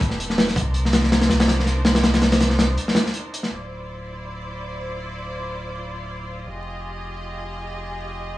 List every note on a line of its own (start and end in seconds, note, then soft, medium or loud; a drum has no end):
0.00 0.54 C4 medium
0.00 0.53 G4 medium
0.00 0.54 A4 medium
0.00 0.54 B4 medium
0.00 kick medium
0.00 closed hi-hat medium
0.10 0.55 E1 medium
0.10 snare soft
0.20 closed hi-hat medium
0.30 snare soft
0.38 snare loud
0.38 open hi-hat medium
0.48 snare soft
0.56 1.29 C2 loud
0.56 3.48 D4 medium
0.56 3.48 D#4 medium
0.56 3.48 A#4 medium
0.56 3.48 C5 medium
0.56 kick loud
0.56 closed hi-hat medium
0.74 closed hi-hat medium
0.85 snare soft
0.93 snare loud
0.93 closed hi-hat medium
1.04 snare medium
1.12 snare loud
1.12 closed hi-hat medium
1.21 snare loud
1.21 closed hi-hat medium
1.30 2.02 C2 medium
1.30 snare loud
1.30 closed hi-hat medium
1.40 snare loud
1.40 closed hi-hat medium
1.48 snare loud
1.48 closed hi-hat medium
1.60 snare medium
1.66 snare soft
1.66 closed hi-hat medium
1.85 snare loud
1.85 closed hi-hat medium
1.95 snare loud
1.95 closed hi-hat medium
2.04 2.76 C2 loud
2.04 snare loud
2.04 closed hi-hat medium
2.14 snare loud
2.14 closed hi-hat medium
2.22 snare loud
2.22 closed hi-hat medium
2.32 snare loud
2.32 closed hi-hat medium
2.40 snare loud
2.40 closed hi-hat medium
2.50 snare soft
2.59 snare loud
2.59 closed hi-hat medium
2.78 closed hi-hat medium
2.88 snare medium
2.95 snare loud
2.95 closed hi-hat medium
3.06 snare soft
3.14 closed hi-hat medium
3.34 closed hi-hat medium
3.43 snare soft
3.51 6.44 D1 medium
3.51 6.43 E4 medium
3.51 8.38 F4 medium
3.51 6.42 C5 medium
3.51 6.43 D5 medium
6.45 8.38 F1 medium
6.45 8.38 G4 medium
6.45 8.38 G#4 medium
6.45 8.38 D#5 medium